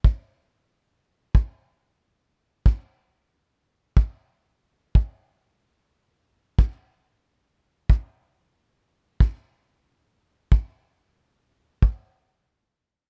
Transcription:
\new DrumStaff \with { instrumentName = "Drums" } \drummode { \time 4/4 \tempo 4 = 92 bd4 r4 bd4 r4 | bd4 r4 bd4 r8 bd8 | r4 r4 bd4 r4 | bd4 r4 bd4 r4 |
bd4 r4 bd4 r4 | }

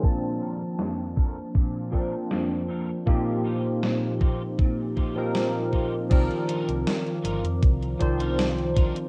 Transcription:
<<
  \new Staff \with { instrumentName = "Ambient pad" } { \time 4/4 \key c \dorian \tempo 4 = 79 << { <d' a''>1 | <bes, ees' g'>1 | <f'' d'''>1 | } \\ { <f bes c''>1~ | <f bes c''>1 | <bes' bes''>1 | } >> }
  \new Staff \with { instrumentName = "Clean electric guitar" } { \time 4/4 \key c \dorian << { r8 <c' d' a' bes'>16 r8. <c' d' a' bes'>16 r8. <c' d' a' bes'>16 r8. <c' d' a' bes'>16 r16 | r8 <c' ees' f' g'>16 r8. <c' ees' f' g'>16 r8. <c' ees' f' g'>16 r8. <c' ees' f' g'>16 r16 | r8 <d' ees' f' bes'>16 r8. <d' ees' f' bes'>16 r4 <d' ees' f' bes'>16 r8 <d' ees' f' bes'>16 r16 | } \\ { bes,4 f,4 bes,4 f,4 | bes,4 bes,4 bes,4 bes,4 | r1 | } >> }
  \new Staff \with { instrumentName = "Tine electric piano" } { \time 4/4 \key c \dorian <f bes c' d' a''>2~ <f bes c' d' a''>8 <f bes c' d'>4. | <bes, f bes c' ees' g'>2~ <bes, f bes c' ees' g'>8. <bes, f bes c' ees' bes'>4~ <bes, f bes c' ees' bes'>16 | <ees f c' bes' d''>2~ <ees f c' bes' d''>8 <ees f c' c'' d''>4. | }
  \new Staff \with { instrumentName = "Fingered electric bass" } { \clef bass \time 4/4 \key c \dorian r1 | r1 | c,16 r8 c,16 r8 g,,16 f,16 c,8 c,4~ c,16 r16 | }
  \new DrumStaff \with { instrumentName = "Drums" } \drummode { \time 4/4 bd4 sn8 bd8 bd8 bd8 sn4 | bd4 sn8 bd8 bd8 bd8 sn8 bd8 | <cymc hh bd>16 hh16 hh16 hh16 <hh sn>16 hh16 hh16 hh16 <hh bd>16 hh16 <hh bd>16 hh16 <hh sn>16 hh16 <hh bd>16 hh16 | }
>>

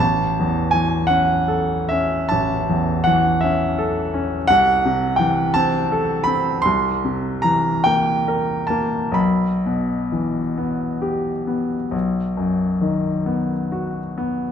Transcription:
<<
  \new Staff \with { instrumentName = "Grand piano" } { \time 12/8 \key a \lydian \tempo 4. = 50 a''4 gis''8 fis''4 e''8 a''4 fis''8 e''4. | \key e \minor fis''4 g''8 a''4 b''8 c'''4 bes''8 g''4 a''8 | b''1~ b''4. r8 | }
  \new Staff \with { instrumentName = "Grand piano" } { \clef bass \time 12/8 \key a \lydian a,,8 e,8 e8 cis'8 a'8 cis'8 a,,8 e,8 e8 cis'8 a'8 cis'8 | \key e \minor c,8 c8 e8 c'8 a'8 c'8 c,8 c8 e8 bes8 bes'8 bes8 | b,,8 b,8 e8 b8 g'8 b8 b,,8 fis,8 dis8 b8 fis'8 b8 | }
>>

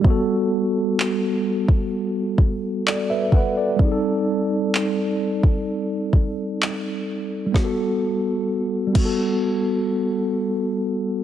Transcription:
<<
  \new Staff \with { instrumentName = "Tine electric piano" } { \time 4/4 \key g \major \tempo 4 = 64 << { r2. <a' d''>16 <b' e''>16 <b' fis''>16 <a' d''>16~ | <a' d''>16 r2. r8. | r1 | } \\ { <g b fis' a'>1 | <g c' ees' aes' a'>1 | <g b fis' a'>8 r4 <g b fis' a'>2~ <g b fis' a'>8 | } >> }
  \new DrumStaff \with { instrumentName = "Drums" } \drummode { \time 4/4 bd4 hc8. bd16 r8 bd8 hc8 bd8 | bd4 hc8. bd16 r8 bd8 hc4 | <bd sn>4 r8 <cymc bd>8 r4 r4 | }
>>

